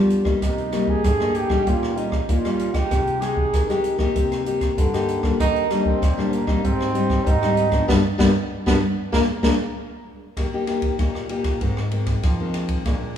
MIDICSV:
0, 0, Header, 1, 5, 480
1, 0, Start_track
1, 0, Key_signature, -3, "minor"
1, 0, Tempo, 621762
1, 325, Time_signature, 4, 2, 24, 8
1, 10173, End_track
2, 0, Start_track
2, 0, Title_t, "Trombone"
2, 0, Program_c, 0, 57
2, 0, Note_on_c, 0, 65, 115
2, 85, Note_off_c, 0, 65, 0
2, 329, Note_on_c, 0, 63, 96
2, 682, Note_on_c, 0, 68, 114
2, 694, Note_off_c, 0, 63, 0
2, 1051, Note_on_c, 0, 67, 105
2, 1063, Note_off_c, 0, 68, 0
2, 1296, Note_on_c, 0, 65, 99
2, 1308, Note_off_c, 0, 67, 0
2, 1530, Note_on_c, 0, 63, 83
2, 1542, Note_off_c, 0, 65, 0
2, 1776, Note_on_c, 0, 65, 93
2, 1788, Note_off_c, 0, 63, 0
2, 2125, Note_on_c, 0, 67, 107
2, 2136, Note_off_c, 0, 65, 0
2, 2490, Note_on_c, 0, 68, 98
2, 2502, Note_off_c, 0, 67, 0
2, 2969, Note_off_c, 0, 68, 0
2, 4172, Note_on_c, 0, 63, 123
2, 4522, Note_on_c, 0, 60, 104
2, 4534, Note_off_c, 0, 63, 0
2, 4883, Note_on_c, 0, 58, 97
2, 4895, Note_off_c, 0, 60, 0
2, 5125, Note_off_c, 0, 58, 0
2, 5131, Note_on_c, 0, 60, 111
2, 5610, Note_on_c, 0, 63, 119
2, 5622, Note_off_c, 0, 60, 0
2, 6081, Note_off_c, 0, 63, 0
2, 6085, Note_on_c, 0, 59, 102
2, 6143, Note_off_c, 0, 59, 0
2, 6319, Note_on_c, 0, 59, 104
2, 6378, Note_off_c, 0, 59, 0
2, 6690, Note_on_c, 0, 59, 104
2, 6746, Note_off_c, 0, 59, 0
2, 7044, Note_on_c, 0, 58, 101
2, 7102, Note_off_c, 0, 58, 0
2, 7279, Note_on_c, 0, 58, 84
2, 7339, Note_off_c, 0, 58, 0
2, 10173, End_track
3, 0, Start_track
3, 0, Title_t, "Nylon-string guitar"
3, 0, Program_c, 1, 24
3, 0, Note_on_c, 1, 50, 49
3, 0, Note_on_c, 1, 53, 67
3, 0, Note_on_c, 1, 59, 60
3, 0, Note_on_c, 1, 62, 70
3, 166, Note_off_c, 1, 53, 0
3, 168, Note_off_c, 1, 59, 0
3, 169, Note_off_c, 1, 62, 0
3, 189, Note_on_c, 1, 55, 57
3, 194, Note_on_c, 1, 58, 57
3, 195, Note_on_c, 1, 63, 60
3, 298, Note_off_c, 1, 50, 0
3, 322, Note_on_c, 1, 48, 56
3, 520, Note_off_c, 1, 55, 0
3, 521, Note_off_c, 1, 58, 0
3, 522, Note_off_c, 1, 63, 0
3, 557, Note_on_c, 1, 55, 58
3, 560, Note_on_c, 1, 58, 61
3, 565, Note_on_c, 1, 63, 63
3, 781, Note_off_c, 1, 48, 0
3, 787, Note_off_c, 1, 55, 0
3, 789, Note_off_c, 1, 58, 0
3, 790, Note_off_c, 1, 63, 0
3, 805, Note_on_c, 1, 43, 54
3, 929, Note_on_c, 1, 55, 59
3, 931, Note_on_c, 1, 58, 66
3, 936, Note_on_c, 1, 63, 73
3, 1130, Note_off_c, 1, 55, 0
3, 1131, Note_off_c, 1, 58, 0
3, 1132, Note_off_c, 1, 63, 0
3, 1152, Note_on_c, 1, 55, 68
3, 1157, Note_on_c, 1, 61, 70
3, 1160, Note_on_c, 1, 63, 62
3, 1262, Note_off_c, 1, 43, 0
3, 1284, Note_on_c, 1, 46, 52
3, 1481, Note_off_c, 1, 55, 0
3, 1484, Note_off_c, 1, 61, 0
3, 1485, Note_off_c, 1, 63, 0
3, 1521, Note_on_c, 1, 55, 59
3, 1524, Note_on_c, 1, 61, 59
3, 1530, Note_on_c, 1, 63, 61
3, 1742, Note_off_c, 1, 46, 0
3, 1750, Note_off_c, 1, 55, 0
3, 1751, Note_off_c, 1, 61, 0
3, 1753, Note_off_c, 1, 63, 0
3, 1764, Note_on_c, 1, 46, 55
3, 1889, Note_on_c, 1, 55, 67
3, 1894, Note_on_c, 1, 61, 70
3, 1895, Note_on_c, 1, 63, 72
3, 2090, Note_off_c, 1, 55, 0
3, 2092, Note_off_c, 1, 61, 0
3, 2093, Note_off_c, 1, 63, 0
3, 2113, Note_on_c, 1, 56, 58
3, 2115, Note_on_c, 1, 63, 65
3, 2121, Note_on_c, 1, 67, 61
3, 2222, Note_off_c, 1, 46, 0
3, 2246, Note_on_c, 1, 48, 52
3, 2442, Note_off_c, 1, 56, 0
3, 2444, Note_off_c, 1, 63, 0
3, 2445, Note_off_c, 1, 67, 0
3, 2481, Note_on_c, 1, 56, 59
3, 2485, Note_on_c, 1, 63, 66
3, 2703, Note_off_c, 1, 48, 0
3, 2724, Note_on_c, 1, 48, 57
3, 2806, Note_off_c, 1, 56, 0
3, 2808, Note_off_c, 1, 63, 0
3, 2849, Note_on_c, 1, 56, 72
3, 2853, Note_on_c, 1, 63, 64
3, 2857, Note_on_c, 1, 67, 74
3, 3050, Note_off_c, 1, 56, 0
3, 3052, Note_off_c, 1, 63, 0
3, 3054, Note_off_c, 1, 67, 0
3, 3075, Note_on_c, 1, 58, 67
3, 3079, Note_on_c, 1, 63, 67
3, 3085, Note_on_c, 1, 67, 74
3, 3182, Note_off_c, 1, 48, 0
3, 3206, Note_on_c, 1, 48, 55
3, 3403, Note_off_c, 1, 58, 0
3, 3406, Note_off_c, 1, 63, 0
3, 3407, Note_off_c, 1, 67, 0
3, 3443, Note_on_c, 1, 58, 58
3, 3447, Note_on_c, 1, 63, 57
3, 3450, Note_on_c, 1, 67, 60
3, 3663, Note_off_c, 1, 48, 0
3, 3685, Note_on_c, 1, 43, 56
3, 3767, Note_off_c, 1, 58, 0
3, 3769, Note_off_c, 1, 63, 0
3, 3771, Note_off_c, 1, 67, 0
3, 3809, Note_on_c, 1, 58, 75
3, 3814, Note_on_c, 1, 63, 75
3, 3816, Note_on_c, 1, 67, 75
3, 4010, Note_off_c, 1, 58, 0
3, 4012, Note_off_c, 1, 63, 0
3, 4013, Note_off_c, 1, 67, 0
3, 4037, Note_on_c, 1, 55, 65
3, 4040, Note_on_c, 1, 58, 67
3, 4044, Note_on_c, 1, 62, 62
3, 4142, Note_off_c, 1, 43, 0
3, 4165, Note_on_c, 1, 51, 58
3, 4364, Note_off_c, 1, 55, 0
3, 4366, Note_off_c, 1, 58, 0
3, 4367, Note_off_c, 1, 62, 0
3, 4402, Note_on_c, 1, 55, 60
3, 4406, Note_on_c, 1, 58, 56
3, 4407, Note_on_c, 1, 62, 68
3, 4622, Note_off_c, 1, 51, 0
3, 4630, Note_off_c, 1, 55, 0
3, 4631, Note_off_c, 1, 58, 0
3, 4632, Note_off_c, 1, 62, 0
3, 4647, Note_on_c, 1, 46, 60
3, 4768, Note_on_c, 1, 55, 63
3, 4773, Note_on_c, 1, 58, 73
3, 4773, Note_on_c, 1, 62, 72
3, 4969, Note_off_c, 1, 55, 0
3, 4970, Note_off_c, 1, 58, 0
3, 4972, Note_off_c, 1, 62, 0
3, 4993, Note_on_c, 1, 55, 65
3, 4996, Note_on_c, 1, 60, 66
3, 5000, Note_on_c, 1, 63, 75
3, 5103, Note_off_c, 1, 46, 0
3, 5126, Note_on_c, 1, 44, 59
3, 5322, Note_off_c, 1, 55, 0
3, 5322, Note_off_c, 1, 60, 0
3, 5325, Note_off_c, 1, 63, 0
3, 5361, Note_on_c, 1, 55, 61
3, 5364, Note_on_c, 1, 60, 70
3, 5367, Note_on_c, 1, 63, 73
3, 5582, Note_off_c, 1, 44, 0
3, 5600, Note_on_c, 1, 51, 64
3, 5685, Note_off_c, 1, 55, 0
3, 5686, Note_off_c, 1, 60, 0
3, 5688, Note_off_c, 1, 63, 0
3, 5725, Note_on_c, 1, 55, 61
3, 5727, Note_on_c, 1, 60, 77
3, 5732, Note_on_c, 1, 63, 73
3, 5927, Note_off_c, 1, 55, 0
3, 5928, Note_off_c, 1, 60, 0
3, 5930, Note_off_c, 1, 63, 0
3, 5951, Note_on_c, 1, 53, 56
3, 5955, Note_on_c, 1, 59, 57
3, 5958, Note_on_c, 1, 62, 72
3, 6059, Note_off_c, 1, 51, 0
3, 6076, Note_off_c, 1, 62, 0
3, 6078, Note_off_c, 1, 53, 0
3, 6078, Note_off_c, 1, 59, 0
3, 6084, Note_on_c, 1, 55, 102
3, 6087, Note_on_c, 1, 62, 100
3, 6088, Note_on_c, 1, 59, 105
3, 6162, Note_off_c, 1, 55, 0
3, 6162, Note_off_c, 1, 62, 0
3, 6163, Note_off_c, 1, 59, 0
3, 6315, Note_on_c, 1, 55, 103
3, 6320, Note_on_c, 1, 59, 98
3, 6322, Note_on_c, 1, 62, 102
3, 6397, Note_off_c, 1, 62, 0
3, 6398, Note_off_c, 1, 55, 0
3, 6398, Note_off_c, 1, 59, 0
3, 6686, Note_on_c, 1, 55, 107
3, 6691, Note_on_c, 1, 59, 94
3, 6693, Note_on_c, 1, 62, 95
3, 6764, Note_off_c, 1, 55, 0
3, 6764, Note_off_c, 1, 59, 0
3, 6764, Note_off_c, 1, 62, 0
3, 7043, Note_on_c, 1, 56, 93
3, 7045, Note_on_c, 1, 58, 97
3, 7047, Note_on_c, 1, 62, 84
3, 7120, Note_off_c, 1, 62, 0
3, 7121, Note_off_c, 1, 56, 0
3, 7121, Note_off_c, 1, 58, 0
3, 7279, Note_on_c, 1, 56, 99
3, 7280, Note_on_c, 1, 58, 98
3, 7282, Note_on_c, 1, 62, 85
3, 7358, Note_off_c, 1, 58, 0
3, 7359, Note_off_c, 1, 56, 0
3, 7359, Note_off_c, 1, 62, 0
3, 8006, Note_on_c, 1, 51, 47
3, 8008, Note_on_c, 1, 58, 49
3, 8012, Note_on_c, 1, 63, 45
3, 8012, Note_on_c, 1, 67, 50
3, 8078, Note_off_c, 1, 58, 0
3, 8079, Note_off_c, 1, 63, 0
3, 8081, Note_off_c, 1, 67, 0
3, 8129, Note_on_c, 1, 58, 59
3, 8134, Note_on_c, 1, 63, 55
3, 8137, Note_on_c, 1, 67, 64
3, 8209, Note_off_c, 1, 58, 0
3, 8211, Note_off_c, 1, 63, 0
3, 8213, Note_off_c, 1, 67, 0
3, 8238, Note_on_c, 1, 58, 58
3, 8242, Note_on_c, 1, 63, 56
3, 8245, Note_on_c, 1, 67, 57
3, 8444, Note_off_c, 1, 58, 0
3, 8445, Note_off_c, 1, 63, 0
3, 8447, Note_off_c, 1, 67, 0
3, 8462, Note_off_c, 1, 51, 0
3, 8487, Note_on_c, 1, 46, 48
3, 8489, Note_on_c, 1, 58, 47
3, 8491, Note_on_c, 1, 63, 55
3, 8495, Note_on_c, 1, 67, 53
3, 8689, Note_off_c, 1, 58, 0
3, 8690, Note_off_c, 1, 63, 0
3, 8692, Note_off_c, 1, 67, 0
3, 8723, Note_on_c, 1, 58, 56
3, 8727, Note_on_c, 1, 63, 56
3, 8728, Note_on_c, 1, 67, 60
3, 8943, Note_off_c, 1, 46, 0
3, 8945, Note_off_c, 1, 58, 0
3, 8947, Note_off_c, 1, 63, 0
3, 8948, Note_off_c, 1, 67, 0
3, 8965, Note_on_c, 1, 44, 54
3, 8966, Note_on_c, 1, 51, 48
3, 8968, Note_on_c, 1, 56, 48
3, 8974, Note_on_c, 1, 60, 55
3, 9107, Note_off_c, 1, 51, 0
3, 9109, Note_off_c, 1, 56, 0
3, 9110, Note_off_c, 1, 60, 0
3, 9202, Note_on_c, 1, 51, 52
3, 9205, Note_on_c, 1, 56, 49
3, 9211, Note_on_c, 1, 60, 55
3, 9422, Note_off_c, 1, 44, 0
3, 9429, Note_off_c, 1, 51, 0
3, 9432, Note_off_c, 1, 56, 0
3, 9433, Note_off_c, 1, 60, 0
3, 9447, Note_on_c, 1, 51, 53
3, 9563, Note_off_c, 1, 51, 0
3, 9572, Note_on_c, 1, 51, 60
3, 9577, Note_on_c, 1, 56, 60
3, 9579, Note_on_c, 1, 60, 64
3, 9892, Note_off_c, 1, 51, 0
3, 9893, Note_off_c, 1, 56, 0
3, 9895, Note_off_c, 1, 60, 0
3, 9930, Note_on_c, 1, 46, 46
3, 9931, Note_on_c, 1, 53, 49
3, 9934, Note_on_c, 1, 56, 52
3, 9937, Note_on_c, 1, 62, 52
3, 10173, Note_off_c, 1, 46, 0
3, 10173, Note_off_c, 1, 53, 0
3, 10173, Note_off_c, 1, 56, 0
3, 10173, Note_off_c, 1, 62, 0
3, 10173, End_track
4, 0, Start_track
4, 0, Title_t, "Nylon-string guitar"
4, 0, Program_c, 2, 24
4, 0, Note_on_c, 2, 55, 103
4, 251, Note_off_c, 2, 55, 0
4, 805, Note_on_c, 2, 45, 88
4, 1214, Note_off_c, 2, 45, 0
4, 2729, Note_on_c, 2, 51, 83
4, 3137, Note_off_c, 2, 51, 0
4, 3687, Note_on_c, 2, 50, 105
4, 4095, Note_off_c, 2, 50, 0
4, 5607, Note_on_c, 2, 44, 98
4, 6015, Note_off_c, 2, 44, 0
4, 6088, Note_on_c, 2, 43, 91
4, 6176, Note_off_c, 2, 43, 0
4, 6316, Note_on_c, 2, 43, 94
4, 6410, Note_off_c, 2, 43, 0
4, 6693, Note_on_c, 2, 43, 94
4, 6778, Note_off_c, 2, 43, 0
4, 7045, Note_on_c, 2, 46, 95
4, 7134, Note_off_c, 2, 46, 0
4, 7273, Note_on_c, 2, 46, 88
4, 7368, Note_off_c, 2, 46, 0
4, 9443, Note_on_c, 2, 53, 85
4, 9853, Note_off_c, 2, 53, 0
4, 10173, End_track
5, 0, Start_track
5, 0, Title_t, "Drums"
5, 79, Note_on_c, 9, 42, 48
5, 156, Note_off_c, 9, 42, 0
5, 193, Note_on_c, 9, 37, 68
5, 194, Note_on_c, 9, 36, 72
5, 270, Note_off_c, 9, 37, 0
5, 271, Note_off_c, 9, 36, 0
5, 324, Note_on_c, 9, 36, 64
5, 325, Note_on_c, 9, 37, 67
5, 325, Note_on_c, 9, 42, 65
5, 402, Note_off_c, 9, 36, 0
5, 402, Note_off_c, 9, 37, 0
5, 402, Note_off_c, 9, 42, 0
5, 448, Note_on_c, 9, 42, 30
5, 525, Note_off_c, 9, 42, 0
5, 559, Note_on_c, 9, 37, 77
5, 559, Note_on_c, 9, 42, 51
5, 636, Note_off_c, 9, 37, 0
5, 636, Note_off_c, 9, 42, 0
5, 675, Note_on_c, 9, 36, 61
5, 752, Note_off_c, 9, 36, 0
5, 804, Note_on_c, 9, 37, 69
5, 804, Note_on_c, 9, 42, 67
5, 805, Note_on_c, 9, 36, 84
5, 882, Note_off_c, 9, 36, 0
5, 882, Note_off_c, 9, 37, 0
5, 882, Note_off_c, 9, 42, 0
5, 927, Note_on_c, 9, 37, 65
5, 1005, Note_off_c, 9, 37, 0
5, 1039, Note_on_c, 9, 42, 46
5, 1116, Note_off_c, 9, 42, 0
5, 1156, Note_on_c, 9, 36, 69
5, 1156, Note_on_c, 9, 37, 71
5, 1233, Note_off_c, 9, 36, 0
5, 1233, Note_off_c, 9, 37, 0
5, 1287, Note_on_c, 9, 36, 68
5, 1287, Note_on_c, 9, 42, 59
5, 1364, Note_off_c, 9, 36, 0
5, 1364, Note_off_c, 9, 42, 0
5, 1411, Note_on_c, 9, 37, 76
5, 1488, Note_off_c, 9, 37, 0
5, 1523, Note_on_c, 9, 42, 46
5, 1600, Note_off_c, 9, 42, 0
5, 1636, Note_on_c, 9, 37, 66
5, 1637, Note_on_c, 9, 36, 63
5, 1713, Note_off_c, 9, 37, 0
5, 1714, Note_off_c, 9, 36, 0
5, 1766, Note_on_c, 9, 42, 66
5, 1767, Note_on_c, 9, 36, 83
5, 1844, Note_off_c, 9, 36, 0
5, 1844, Note_off_c, 9, 42, 0
5, 1890, Note_on_c, 9, 37, 68
5, 1890, Note_on_c, 9, 42, 34
5, 1967, Note_off_c, 9, 37, 0
5, 1967, Note_off_c, 9, 42, 0
5, 2002, Note_on_c, 9, 42, 52
5, 2079, Note_off_c, 9, 42, 0
5, 2117, Note_on_c, 9, 36, 71
5, 2117, Note_on_c, 9, 37, 75
5, 2117, Note_on_c, 9, 42, 34
5, 2194, Note_off_c, 9, 36, 0
5, 2194, Note_off_c, 9, 37, 0
5, 2194, Note_off_c, 9, 42, 0
5, 2247, Note_on_c, 9, 36, 70
5, 2247, Note_on_c, 9, 37, 67
5, 2247, Note_on_c, 9, 42, 63
5, 2324, Note_off_c, 9, 36, 0
5, 2324, Note_off_c, 9, 37, 0
5, 2324, Note_off_c, 9, 42, 0
5, 2371, Note_on_c, 9, 42, 33
5, 2448, Note_off_c, 9, 42, 0
5, 2484, Note_on_c, 9, 37, 64
5, 2484, Note_on_c, 9, 42, 50
5, 2561, Note_off_c, 9, 37, 0
5, 2561, Note_off_c, 9, 42, 0
5, 2597, Note_on_c, 9, 36, 69
5, 2675, Note_off_c, 9, 36, 0
5, 2728, Note_on_c, 9, 36, 81
5, 2729, Note_on_c, 9, 37, 66
5, 2729, Note_on_c, 9, 42, 70
5, 2805, Note_off_c, 9, 36, 0
5, 2806, Note_off_c, 9, 37, 0
5, 2806, Note_off_c, 9, 42, 0
5, 2854, Note_on_c, 9, 37, 59
5, 2854, Note_on_c, 9, 42, 30
5, 2931, Note_off_c, 9, 37, 0
5, 2931, Note_off_c, 9, 42, 0
5, 2963, Note_on_c, 9, 42, 53
5, 3041, Note_off_c, 9, 42, 0
5, 3077, Note_on_c, 9, 36, 68
5, 3077, Note_on_c, 9, 37, 72
5, 3154, Note_off_c, 9, 37, 0
5, 3155, Note_off_c, 9, 36, 0
5, 3208, Note_on_c, 9, 36, 63
5, 3208, Note_on_c, 9, 42, 70
5, 3286, Note_off_c, 9, 36, 0
5, 3286, Note_off_c, 9, 42, 0
5, 3333, Note_on_c, 9, 37, 67
5, 3333, Note_on_c, 9, 42, 36
5, 3410, Note_off_c, 9, 37, 0
5, 3410, Note_off_c, 9, 42, 0
5, 3444, Note_on_c, 9, 42, 53
5, 3522, Note_off_c, 9, 42, 0
5, 3558, Note_on_c, 9, 36, 63
5, 3559, Note_on_c, 9, 37, 66
5, 3559, Note_on_c, 9, 42, 34
5, 3635, Note_off_c, 9, 36, 0
5, 3636, Note_off_c, 9, 37, 0
5, 3636, Note_off_c, 9, 42, 0
5, 3689, Note_on_c, 9, 36, 85
5, 3689, Note_on_c, 9, 42, 67
5, 3766, Note_off_c, 9, 36, 0
5, 3767, Note_off_c, 9, 42, 0
5, 3814, Note_on_c, 9, 37, 70
5, 3814, Note_on_c, 9, 42, 33
5, 3891, Note_off_c, 9, 37, 0
5, 3891, Note_off_c, 9, 42, 0
5, 3925, Note_on_c, 9, 42, 51
5, 4002, Note_off_c, 9, 42, 0
5, 4038, Note_on_c, 9, 36, 72
5, 4039, Note_on_c, 9, 37, 72
5, 4116, Note_off_c, 9, 36, 0
5, 4117, Note_off_c, 9, 37, 0
5, 4169, Note_on_c, 9, 36, 73
5, 4170, Note_on_c, 9, 37, 71
5, 4170, Note_on_c, 9, 42, 69
5, 4246, Note_off_c, 9, 36, 0
5, 4247, Note_off_c, 9, 37, 0
5, 4247, Note_off_c, 9, 42, 0
5, 4293, Note_on_c, 9, 42, 33
5, 4370, Note_off_c, 9, 42, 0
5, 4404, Note_on_c, 9, 37, 70
5, 4404, Note_on_c, 9, 42, 50
5, 4481, Note_off_c, 9, 37, 0
5, 4481, Note_off_c, 9, 42, 0
5, 4518, Note_on_c, 9, 36, 72
5, 4595, Note_off_c, 9, 36, 0
5, 4649, Note_on_c, 9, 36, 88
5, 4651, Note_on_c, 9, 37, 71
5, 4651, Note_on_c, 9, 42, 65
5, 4726, Note_off_c, 9, 36, 0
5, 4728, Note_off_c, 9, 37, 0
5, 4728, Note_off_c, 9, 42, 0
5, 4775, Note_on_c, 9, 37, 56
5, 4852, Note_off_c, 9, 37, 0
5, 4885, Note_on_c, 9, 42, 49
5, 4962, Note_off_c, 9, 42, 0
5, 4998, Note_on_c, 9, 36, 72
5, 4999, Note_on_c, 9, 37, 67
5, 5075, Note_off_c, 9, 36, 0
5, 5076, Note_off_c, 9, 37, 0
5, 5128, Note_on_c, 9, 36, 62
5, 5130, Note_on_c, 9, 42, 56
5, 5206, Note_off_c, 9, 36, 0
5, 5207, Note_off_c, 9, 42, 0
5, 5253, Note_on_c, 9, 37, 76
5, 5330, Note_off_c, 9, 37, 0
5, 5365, Note_on_c, 9, 42, 51
5, 5442, Note_off_c, 9, 42, 0
5, 5477, Note_on_c, 9, 36, 70
5, 5479, Note_on_c, 9, 37, 68
5, 5555, Note_off_c, 9, 36, 0
5, 5556, Note_off_c, 9, 37, 0
5, 5608, Note_on_c, 9, 36, 95
5, 5610, Note_on_c, 9, 42, 68
5, 5685, Note_off_c, 9, 36, 0
5, 5687, Note_off_c, 9, 42, 0
5, 5733, Note_on_c, 9, 37, 75
5, 5733, Note_on_c, 9, 42, 33
5, 5811, Note_off_c, 9, 37, 0
5, 5811, Note_off_c, 9, 42, 0
5, 5843, Note_on_c, 9, 42, 49
5, 5920, Note_off_c, 9, 42, 0
5, 5957, Note_on_c, 9, 36, 69
5, 5957, Note_on_c, 9, 37, 71
5, 5957, Note_on_c, 9, 42, 31
5, 6034, Note_off_c, 9, 36, 0
5, 6035, Note_off_c, 9, 37, 0
5, 6035, Note_off_c, 9, 42, 0
5, 6087, Note_on_c, 9, 36, 72
5, 6087, Note_on_c, 9, 38, 76
5, 6164, Note_off_c, 9, 36, 0
5, 6165, Note_off_c, 9, 38, 0
5, 6321, Note_on_c, 9, 36, 72
5, 6321, Note_on_c, 9, 38, 78
5, 6398, Note_off_c, 9, 36, 0
5, 6399, Note_off_c, 9, 38, 0
5, 6689, Note_on_c, 9, 36, 77
5, 6690, Note_on_c, 9, 38, 72
5, 6766, Note_off_c, 9, 36, 0
5, 6767, Note_off_c, 9, 38, 0
5, 7045, Note_on_c, 9, 36, 74
5, 7046, Note_on_c, 9, 38, 78
5, 7122, Note_off_c, 9, 36, 0
5, 7123, Note_off_c, 9, 38, 0
5, 7279, Note_on_c, 9, 36, 72
5, 7279, Note_on_c, 9, 38, 76
5, 7356, Note_off_c, 9, 36, 0
5, 7356, Note_off_c, 9, 38, 0
5, 8004, Note_on_c, 9, 36, 62
5, 8005, Note_on_c, 9, 37, 62
5, 8005, Note_on_c, 9, 51, 48
5, 8081, Note_off_c, 9, 36, 0
5, 8082, Note_off_c, 9, 37, 0
5, 8082, Note_off_c, 9, 51, 0
5, 8238, Note_on_c, 9, 37, 58
5, 8238, Note_on_c, 9, 51, 47
5, 8316, Note_off_c, 9, 37, 0
5, 8316, Note_off_c, 9, 51, 0
5, 8353, Note_on_c, 9, 36, 62
5, 8353, Note_on_c, 9, 51, 43
5, 8430, Note_off_c, 9, 36, 0
5, 8430, Note_off_c, 9, 51, 0
5, 8483, Note_on_c, 9, 37, 63
5, 8483, Note_on_c, 9, 51, 43
5, 8484, Note_on_c, 9, 36, 80
5, 8561, Note_off_c, 9, 36, 0
5, 8561, Note_off_c, 9, 37, 0
5, 8561, Note_off_c, 9, 51, 0
5, 8607, Note_on_c, 9, 37, 55
5, 8684, Note_off_c, 9, 37, 0
5, 8718, Note_on_c, 9, 51, 45
5, 8795, Note_off_c, 9, 51, 0
5, 8833, Note_on_c, 9, 36, 66
5, 8833, Note_on_c, 9, 37, 64
5, 8833, Note_on_c, 9, 51, 45
5, 8910, Note_off_c, 9, 36, 0
5, 8910, Note_off_c, 9, 37, 0
5, 8910, Note_off_c, 9, 51, 0
5, 8963, Note_on_c, 9, 36, 60
5, 8963, Note_on_c, 9, 51, 44
5, 9040, Note_off_c, 9, 36, 0
5, 9040, Note_off_c, 9, 51, 0
5, 9085, Note_on_c, 9, 37, 70
5, 9162, Note_off_c, 9, 37, 0
5, 9198, Note_on_c, 9, 51, 46
5, 9275, Note_off_c, 9, 51, 0
5, 9314, Note_on_c, 9, 36, 64
5, 9314, Note_on_c, 9, 37, 62
5, 9314, Note_on_c, 9, 51, 45
5, 9391, Note_off_c, 9, 36, 0
5, 9391, Note_off_c, 9, 37, 0
5, 9391, Note_off_c, 9, 51, 0
5, 9444, Note_on_c, 9, 36, 90
5, 9444, Note_on_c, 9, 37, 68
5, 9444, Note_on_c, 9, 51, 46
5, 9521, Note_off_c, 9, 37, 0
5, 9521, Note_off_c, 9, 51, 0
5, 9522, Note_off_c, 9, 36, 0
5, 9679, Note_on_c, 9, 37, 61
5, 9679, Note_on_c, 9, 51, 49
5, 9757, Note_off_c, 9, 37, 0
5, 9757, Note_off_c, 9, 51, 0
5, 9793, Note_on_c, 9, 51, 48
5, 9794, Note_on_c, 9, 36, 64
5, 9870, Note_off_c, 9, 51, 0
5, 9871, Note_off_c, 9, 36, 0
5, 9924, Note_on_c, 9, 37, 68
5, 9924, Note_on_c, 9, 51, 46
5, 9925, Note_on_c, 9, 36, 71
5, 10001, Note_off_c, 9, 37, 0
5, 10001, Note_off_c, 9, 51, 0
5, 10002, Note_off_c, 9, 36, 0
5, 10173, End_track
0, 0, End_of_file